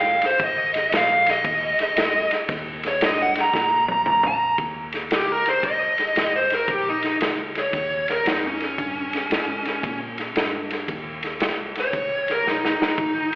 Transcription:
Already playing: G1 F5
0.22 snare, ride
0.26 C5
0.40 G#1, kick, ride
0.44 D#5
0.74 snare, ride
0.92 A#1, snare, ride
0.96 F5
1.26 D#5, snare, ride
1.44 D#2, kick, ride
1.78 muted fingered electric bass stroke, snare, ride
1.97 F#2, snare, ride
2.31 muted fingered electric bass stroke, snare, ride
2.49 D#2, kick, snare, ride
2.83 snare, ride
2.88 C#5
3.01 G2, snare, ride
3.05 D#5
3.22 F#5
3.35 snare, ride
3.41 A#5
3.54 A#2, kick, snare
3.88 A#5, high tom
4.06 F2, mid tom
4.10 A#5
4.23 mid tom
4.28 A#5
4.58 D#2, kick, ride
4.92 snare, ride
5.11 C#2, snare, ride
5.15 G4
5.32 A#4
5.46 C5, snare, ride
5.63 C2 D#5, kick, ride
5.98 snare, ride
6.16 G1, snare, ride
6.36 C5
6.50 A#4, snare, ride
6.68 A#1, kick, ride
6.72 G4
6.89 D#4
7.03 snare, ride
7.20 C#2, snare, ride
7.55 C#5, snare, ride
7.73 D#2, kick, snare, ride
8.08 A#4, snare, ride
8.25 F2, snare, ride
8.30 D#4
8.47 C#4
8.60 snare, ride
8.78 G2, kick, ride
9.13 snare, ride
9.30 G#2, snare, ride
9.65 snare, ride
9.83 A#2, kick, ride
10.18 snare, ride
10.36 G2, snare, ride
10.70 snare, ride
10.88 D#2, kick, ride
11.23 snare, ride
11.40 C2, snare, ride
11.75 snare, ride
11.80 C#5
11.93 C#2, kick, ride
12.28 A#4, snare, ride
12.46 A#1 D#4, snare
12.65 D#4, snare
12.80 muted fingered electric bass stroke, snare
12.98 G#1, kick, ride

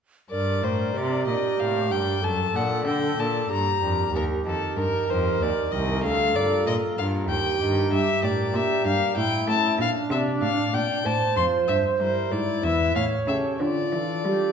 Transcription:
0.30 G2 A#4 D5
0.62 A2 D4 A#4 C5 D5
0.94 C3 G4 D5
1.26 A#2 D4 A#4 D5 D#5
1.59 A2 F5
1.90 G2 D4 A#4 D5 G5
2.22 F#2 A4 A5
2.54 A#2 D4 A4 D5 F#5
2.86 D3 G5
3.18 A#2 D4 A4 D5 A5
3.50 G2 G4 A#5
3.81 F2 D4 G4 A#4
4.12 D#2 G4 A#4
4.45 F2 D#4 G4 A4 A#4
4.76 G2 A#4
5.08 F2 D#4 G4 A#4 C5
5.40 D#2 D5
5.72 C2 D#4 G4 A#4 D#5
6.01 D2 A4 F5
6.34 G2 F4 A#4 D5
6.66 A#2 D#5
6.97 G2 F4 A#4 F5
7.29 D#2 G4 G5
7.61 G2 D#4 G4 A#4
7.91 G2 G4 E5
8.23 A2 D4 G4 A#4 D5
8.54 A#2 G4 E5
8.85 G2 D4 G4 A#4 F5
9.16 A2 E4 G5
9.48 A3 C#4 E4 A4 A5
9.79 A#2 D4 F5
10.10 C3 D4 D5 E5
10.41 A2 F5
10.73 A#2 D4 D5 G5
11.05 A2 C5 A5
11.37 F2 F4 C5 C6
11.68 G2 E5
11.99 G3 E4 A#4 C5
12.31 G#2 E4 D5
12.63 E2 B3 E4 B4 E5
12.95 A2 C#5 F5
13.27 C#3 C#4 G4 A4 E5
13.60 D3 F4 D5
13.92 E3 D4 F4 A4
14.25 G3 G4

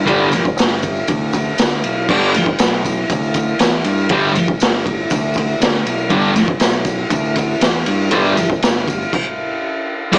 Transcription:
0.06 G1 G2 D3 G3, kick, ride, tambourine
0.32 snare, ride, tambourine
0.45 kick, tambourine
0.56 G1, snare, ride, tambourine
0.69 tambourine
0.83 kick, ride, tambourine
0.95 tambourine
1.07 D2, kick, ride, tambourine
1.33 kick, ride, tambourine
1.45 tambourine
1.58 D2, snare, ride, tambourine
1.72 tambourine
1.84 B1, ride, tambourine
2.08 G1 G2 D3 G3, kick, crash
2.34 snare, ride, tambourine
2.46 kick
2.59 B1, snare, ride, tambourine
2.85 kick, ride, tambourine
3.09 D2, kick, ride, tambourine
3.23 tambourine
3.34 kick, ride, tambourine
3.48 tambourine
3.59 E2, snare, ride, tambourine
3.84 G2, ride, tambourine
3.99 tambourine
4.09 G1 G2 D3 G3, kick, ride
4.35 ride, tambourine
4.48 kick
4.60 G1, snare, ride, tambourine
4.86 kick, ride
5.10 D2, kick, ride, tambourine
5.23 tambourine
5.34 kick, ride, tambourine
5.49 tambourine
5.60 D2, snare, ride, tambourine
5.86 B1, ride, tambourine
5.99 tambourine
6.10 G1 G2 D3 G3, kick, ride
6.36 snare, ride, tambourine
6.48 kick
6.60 B1, snare, ride, tambourine
6.85 kick, ride, tambourine
7.10 D2, kick, ride, tambourine
7.25 tambourine
7.36 kick, ride, tambourine
7.51 tambourine
7.61 E2, snare, ride, tambourine
7.86 G2, ride, tambourine
8.02 tambourine
8.11 G1 G2 D3 G3, kick, ride
8.15 tambourine
8.26 tambourine
8.37 ride, tambourine
8.50 kick, tambourine
8.62 G1, snare, ride, tambourine
8.79 tambourine
8.88 kick, ride, tambourine
9.02 tambourine
9.13 kick, crash
10.12 G1 G2 D3 G3, kick, crash

